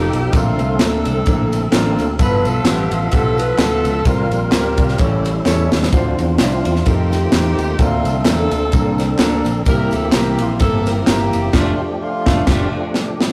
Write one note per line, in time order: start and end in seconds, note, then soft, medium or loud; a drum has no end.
0.00 0.34 F3 medium
0.00 0.30 A#3 medium
0.00 0.17 D#4 medium
0.00 0.30 D#4 medium
0.00 0.34 D#4 medium
0.00 0.17 F4 medium
0.00 0.17 G4 medium
0.00 0.34 G4 medium
0.00 0.37 G4 medium
0.00 0.17 A4 medium
0.00 0.31 A4 medium
0.13 0.30 B1 medium
0.13 ride medium
0.13 tambourine medium
0.32 0.55 A#1 loud
0.32 1.02 A#2 medium
0.32 2.15 D3 medium
0.32 2.15 A3 medium
0.32 1.23 A3 medium
0.32 0.63 A#3 medium
0.32 2.15 C4 medium
0.32 0.63 C4 medium
0.32 0.63 D4 medium
0.32 0.79 D4 medium
0.32 0.80 F4 medium
0.32 2.15 A4 medium
0.32 0.63 A4 medium
0.32 kick loud
0.32 ride medium
0.32 tambourine medium
0.59 0.77 C2 medium
0.59 ride soft
0.59 tambourine medium
0.79 1.02 D2 loud
0.79 1.09 A#3 medium
0.79 1.10 C4 medium
0.79 1.69 C4 medium
0.79 1.10 D4 medium
0.79 1.69 D4 medium
0.79 1.10 A4 medium
0.79 1.73 A4 loud
0.79 snare medium
0.79 clap medium
0.79 ride medium
0.79 tambourine medium
1.05 1.23 C2 loud
1.05 ride medium
1.05 tambourine medium
1.26 1.66 A#1 medium
1.26 1.56 A#3 medium
1.26 1.57 C4 medium
1.26 1.57 D4 medium
1.26 1.57 E4 medium
1.26 kick loud
1.26 ride medium
1.26 tambourine medium
1.52 ride medium
1.52 tambourine medium
1.72 1.95 A1 loud
1.72 2.03 A#3 medium
1.72 2.03 C4 medium
1.72 2.03 D4 medium
1.72 2.03 F4 loud
1.72 snare loud
1.72 clap medium
1.72 ride medium
1.72 tambourine loud
1.98 2.16 D2 medium
1.98 ride medium
1.98 tambourine medium
2.19 2.41 G1 loud
2.19 2.88 G2 medium
2.19 4.02 F3 medium
2.19 4.01 B3 medium
2.19 2.49 B3 medium
2.19 3.09 D4 medium
2.19 2.49 E4 medium
2.19 2.49 F4 medium
2.19 2.90 F4 medium
2.19 4.02 A4 medium
2.19 2.50 A4 medium
2.19 2.44 B4 loud
2.19 4.02 E5 medium
2.19 kick loud
2.19 ride medium
2.19 tambourine medium
2.44 2.62 B1 medium
2.44 2.66 A4 loud
2.44 ride soft
2.44 tambourine medium
2.64 2.87 A1 medium
2.64 2.96 B3 medium
2.64 2.96 E4 medium
2.64 2.96 F4 medium
2.64 2.92 G4 loud
2.64 2.96 B4 medium
2.64 snare loud
2.64 clap medium
2.64 ride medium
2.64 tambourine medium
2.91 3.09 A1 loud
2.91 3.12 F4 medium
2.91 ride medium
2.91 tambourine medium
3.11 3.52 B1 medium
3.11 3.42 B3 medium
3.11 3.58 D4 medium
3.11 3.42 E4 medium
3.11 3.43 F4 medium
3.11 3.58 F4 medium
3.11 3.43 G4 medium
3.11 3.39 A4 loud
3.11 kick medium
3.11 ride medium
3.11 tambourine medium
3.38 3.59 B4 loud
3.38 ride medium
3.38 tambourine medium
3.58 3.81 D2 medium
3.58 3.89 B3 medium
3.58 4.03 D4 medium
3.58 3.89 E4 medium
3.58 3.89 F4 medium
3.58 4.03 F4 medium
3.58 4.06 A4 loud
3.58 3.89 B4 medium
3.58 snare loud
3.58 clap medium
3.58 ride medium
3.58 tambourine medium
3.84 4.02 C#2 medium
3.84 ride medium
3.84 tambourine medium
4.05 4.28 C2 medium
4.05 4.74 C3 medium
4.05 4.96 G3 medium
4.05 4.51 A#3 medium
4.05 4.36 C4 medium
4.05 4.97 C4 medium
4.05 4.36 F4 medium
4.05 4.30 F4 medium
4.05 4.97 F4 medium
4.05 4.36 G4 medium
4.05 4.97 A#4 medium
4.05 4.36 A#4 medium
4.05 kick loud
4.05 ride medium
4.05 tambourine medium
4.31 4.49 A#1 medium
4.31 4.51 F4 medium
4.31 ride soft
4.31 tambourine medium
4.52 4.74 D2 medium
4.52 5.42 A#3 medium
4.52 4.82 C4 medium
4.52 4.83 F4 medium
4.52 5.42 G4 medium
4.52 4.83 G4 medium
4.52 4.83 A#4 medium
4.52 snare loud
4.52 clap medium
4.52 ride medium
4.52 tambourine medium
4.77 4.95 C2 loud
4.77 kick medium
4.77 ride medium
4.77 tambourine medium
4.88 snare soft
4.98 5.39 A1 medium
4.98 5.68 A2 medium
4.98 5.90 G3 medium
4.98 5.90 C#4 medium
4.98 5.29 C#4 medium
4.98 5.89 E4 medium
4.98 5.29 E4 medium
4.98 5.29 G4 medium
4.98 5.90 A4 medium
4.98 5.30 A4 medium
4.98 kick loud
4.98 ride medium
4.98 tambourine medium
5.25 ride medium
5.25 tambourine medium
5.46 5.68 E2 loud
5.46 5.76 C#4 medium
5.46 5.76 E4 medium
5.46 5.76 G4 medium
5.46 5.76 A4 loud
5.46 snare medium
5.46 clap medium
5.46 tambourine loud
5.72 5.90 D#2 medium
5.72 snare medium
5.72 tambourine medium
5.83 snare medium
5.90 6.14 D2 loud
5.90 6.61 D3 medium
5.90 6.83 F3 medium
5.90 6.83 C4 medium
5.90 6.83 D4 medium
5.90 6.23 D4 medium
5.90 5.98 E4 medium
5.90 6.23 E4 medium
5.90 6.23 F4 medium
5.90 6.23 C5 loud
5.90 kick loud
5.90 ride medium
5.90 tambourine medium
5.97 6.85 F4 medium
6.19 6.36 E2 medium
6.19 ride medium
6.19 tambourine medium
6.38 6.61 C2 medium
6.38 6.83 A3 medium
6.38 6.83 C4 medium
6.38 6.69 D4 medium
6.38 6.69 E4 medium
6.38 6.69 F4 medium
6.38 6.84 F4 medium
6.38 6.70 D5 medium
6.38 snare medium
6.38 clap medium
6.38 ride medium
6.38 tambourine medium
6.65 6.83 E2 medium
6.65 ride medium
6.65 tambourine medium
6.75 snare soft
6.85 7.26 F2 loud
6.85 7.78 D#3 medium
6.85 7.78 A3 medium
6.85 7.16 C4 medium
6.85 7.78 C4 medium
6.85 7.76 C4 medium
6.85 7.16 D#4 medium
6.85 7.76 D#4 medium
6.85 7.16 F4 medium
6.85 7.78 F4 medium
6.85 7.80 G4 loud
6.85 7.16 A4 medium
6.85 kick medium
6.85 ride medium
6.85 tambourine medium
7.12 snare soft
7.12 ride medium
7.12 tambourine soft
7.32 7.55 E2 medium
7.32 7.62 C4 medium
7.32 7.63 D#4 medium
7.32 7.63 F4 medium
7.32 7.63 G4 medium
7.32 snare loud
7.32 clap medium
7.32 ride medium
7.32 tambourine loud
7.58 7.76 D#2 medium
7.58 ride medium
7.58 tambourine medium
7.78 8.01 D2 loud
7.78 8.48 D3 medium
7.78 9.63 D3 medium
7.78 8.69 A3 medium
7.78 8.09 A#3 medium
7.78 8.69 A#3 medium
7.78 8.09 C4 medium
7.78 9.63 C4 medium
7.78 9.63 D4 medium
7.78 8.09 D4 medium
7.78 8.25 F4 medium
7.78 9.62 A4 medium
7.78 8.09 A4 medium
7.78 kick loud
7.78 ride medium
7.78 tambourine medium
8.05 8.23 C2 medium
8.05 ride medium
8.05 tambourine medium
8.25 8.48 E2 medium
8.25 8.56 A#3 medium
8.25 9.15 C4 medium
8.25 8.56 C4 medium
8.25 8.56 D4 medium
8.25 9.16 F4 medium
8.25 9.19 A4 loud
8.25 8.57 A4 medium
8.25 snare loud
8.25 clap medium
8.25 ride medium
8.25 tambourine medium
8.51 8.69 D2 medium
8.51 ride medium
8.51 tambourine medium
8.72 9.13 C2 loud
8.72 9.03 A#3 medium
8.72 9.03 C4 medium
8.72 9.03 D4 medium
8.72 9.03 A4 medium
8.72 kick loud
8.72 ride medium
8.72 tambourine medium
8.98 snare soft
8.98 ride medium
8.98 tambourine medium
9.19 9.41 D2 loud
9.19 9.50 A#3 loud
9.19 9.50 C4 medium
9.19 9.50 D4 medium
9.19 9.50 A4 loud
9.19 snare loud
9.19 clap medium
9.19 ride medium
9.19 tambourine medium
9.45 9.63 A#1 medium
9.45 ride medium
9.45 tambourine medium
9.66 9.88 C2 loud
9.66 10.35 C3 medium
9.66 11.50 E3 medium
9.66 11.50 A#3 medium
9.66 9.97 A#3 medium
9.66 11.50 C4 medium
9.66 9.97 C4 medium
9.66 10.56 E4 medium
9.66 9.97 E4 medium
9.66 11.50 G4 medium
9.66 10.12 G4 medium
9.66 9.97 G4 medium
9.66 9.91 A#4 loud
9.66 kick loud
9.66 ride medium
9.66 tambourine medium
9.91 10.10 D2 medium
9.91 10.13 A4 medium
9.91 ride medium
9.91 tambourine medium
10.12 10.39 C2 medium
10.12 10.44 A#3 medium
10.12 10.44 C4 medium
10.12 10.44 E4 medium
10.12 10.40 G4 loud
10.12 10.44 A#4 medium
10.12 snare loud
10.12 clap loud
10.12 ride medium
10.12 tambourine medium
10.39 10.57 A#1 loud
10.39 10.61 F4 medium
10.39 ride medium
10.39 tambourine medium
10.59 11.00 G1 loud
10.59 10.90 A#3 medium
10.59 10.90 C4 medium
10.59 10.90 E4 medium
10.59 11.06 E4 medium
10.59 10.90 A4 medium
10.59 10.84 A4 medium
10.59 kick loud
10.59 ride medium
10.59 tambourine medium
10.86 11.06 A#4 loud
10.86 snare soft
10.86 ride medium
10.86 tambourine soft
11.06 11.29 G1 loud
11.06 11.37 A#3 medium
11.06 11.51 A#3 medium
11.06 11.37 C4 medium
11.06 11.37 E4 medium
11.06 11.51 E4 medium
11.06 11.54 G4 medium
11.06 11.37 A#4 medium
11.06 snare loud
11.06 clap medium
11.06 ride medium
11.06 tambourine medium
11.33 11.51 F#1 medium
11.33 ride medium
11.33 tambourine medium
11.53 11.71 F1 medium
11.53 13.32 F3 medium
11.53 11.99 A3 medium
11.53 11.71 A3 loud
11.53 13.32 A3 medium
11.53 13.32 D4 medium
11.53 11.71 D4 medium
11.53 12.00 D4 medium
11.53 11.72 F4 medium
11.53 11.80 F4 medium
11.53 13.32 G4 medium
11.53 11.72 G4 medium
11.53 kick loud
11.53 snare loud
11.53 crash medium
11.81 12.01 G4 medium
12.01 12.91 A3 medium
12.01 12.91 D4 medium
12.01 12.95 F4 medium
12.26 12.41 F1 loud
12.26 12.40 A3 loud
12.26 12.41 D4 medium
12.26 12.41 F4 loud
12.26 12.41 A4 medium
12.26 kick loud
12.26 snare loud
12.47 12.65 F1 loud
12.47 12.65 A3 loud
12.47 12.65 D4 loud
12.47 12.65 F4 medium
12.47 12.65 G4 loud
12.47 kick loud
12.47 snare loud
12.47 crash medium
12.94 snare medium
13.21 snare medium